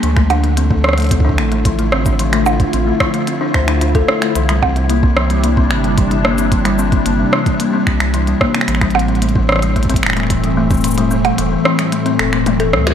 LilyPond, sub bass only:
\new Staff \with { instrumentName = "Sub bass" } { \clef bass \time 4/4 \key d \minor \tempo 4 = 111 d,2~ d,8 a,,4.~ | a,,4 a,,8 r4 d,4 r8 | c,2~ c,8 g,,4.~ | g,,4 g,,8 r4 c,4 r8 |
a,,2~ a,,8 e,,4.~ | e,,4 e,,8 r4 e,,4 d,8 | }